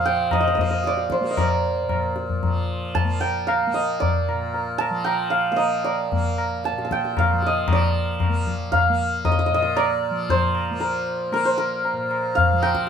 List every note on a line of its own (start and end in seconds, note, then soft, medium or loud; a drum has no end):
0.00 1.82 A#2 medium
0.00 2.43 F3 medium
0.00 0.58 A#3 medium
0.00 1.80 A#4 medium
0.00 1.12 C5 medium
0.00 2.00 F5 medium
0.06 2.14 G5 medium
0.31 0.40 D#5 medium
0.31 tabla na medium
0.31 tabla ge medium
0.40 0.47 D#5 medium
0.48 0.55 D#5 medium
0.55 1.20 A#3 medium
0.55 0.61 D#5 medium
0.55 tabla ge medium
0.61 0.70 D#5 medium
0.71 0.93 D#5 medium
0.84 1.37 D5 medium
0.84 tabla te medium
0.97 tabla te medium
1.10 3.76 C5 medium
1.10 tabla ke medium
1.20 3.04 A#3 medium
1.20 tabla te soft
1.31 1.44 D#5 soft
1.37 3.80 D5 medium
1.37 tabla na medium
1.37 tabla ge medium
1.82 4.28 A#2 medium
1.89 tabla na medium
1.89 tabla ge medium
2.16 tabla te medium
2.30 tabla ge soft
2.43 4.90 F3 medium
2.43 tabla tin medium
2.43 tabla ge medium
2.95 4.78 A5 medium
2.95 tabla tin medium
2.95 tabla ge medium
3.04 3.67 A#3 medium
3.20 5.04 G5 medium
3.20 tabla na medium
3.47 5.30 F5 medium
3.47 tabla na medium
3.67 5.51 A#3 medium
3.74 4.06 D#5 medium
4.00 5.62 D5 medium
4.00 tabla tin medium
4.00 tabla ge medium
4.28 6.71 A#2 medium
4.28 tabla na medium
4.54 tabla tin medium
4.78 6.65 A5 medium
4.78 tabla na medium
4.90 7.33 F3 medium
5.04 6.92 G5 medium
5.04 tabla na medium
5.30 5.51 F5 medium
5.51 6.12 A#3 soft
5.51 7.18 F5 medium
5.56 5.90 D#5 medium
5.56 tabla tin medium
5.84 7.52 D5 medium
5.84 tabla na medium
6.12 8.29 A#3 medium
6.12 tabla tin medium
6.12 tabla ge medium
6.38 tabla na medium
6.64 6.84 A5 medium
6.64 tabla te medium
6.72 9.50 A#2 soft
6.78 tabla te medium
6.85 8.79 A5 medium
6.91 9.00 G5 medium
6.91 tabla ke medium
7.05 tabla te soft
7.17 8.71 F5 medium
7.17 tabla na medium
7.17 tabla ge medium
7.33 7.69 F3 medium
7.43 7.79 D#5 medium
7.43 tabla te soft
7.68 10.11 F3 medium
7.68 tabla na loud
7.68 tabla ge loud
7.73 9.31 D5 medium
8.20 tabla na medium
8.20 tabla ge medium
8.29 8.89 A#3 medium
8.47 tabla ge medium
8.72 10.94 F5 medium
8.72 tabla tin medium
8.72 tabla ge medium
8.89 10.71 A#3 medium
9.25 9.31 D#5 medium
9.25 tabla tin medium
9.25 tabla ge medium
9.32 9.38 D#5 medium
9.39 9.46 D#5 medium
9.46 9.54 D#5 medium
9.51 11.93 A#2 medium
9.51 9.62 D#5 medium
9.62 9.83 D#5 medium
9.77 12.24 D5 medium
9.77 tabla na medium
10.11 12.53 F3 medium
10.29 11.45 C5 medium
10.29 tabla tin medium
10.29 tabla ge medium
10.55 tabla na medium
10.71 11.32 A#3 medium
10.80 11.33 A#4 medium
10.80 tabla tin medium
11.32 12.89 A#3 medium
11.32 11.57 A#4 medium
11.32 tabla na medium
11.45 12.89 C5 medium
11.58 12.89 A#4 medium
11.85 tabla tin medium
11.93 12.89 A#2 medium
12.11 tabla na medium
12.35 12.89 F5 medium
12.35 tabla tin medium
12.35 tabla ge medium
12.53 12.89 F3 medium
12.62 12.89 G5 medium
12.62 tabla na medium
12.75 tabla ke medium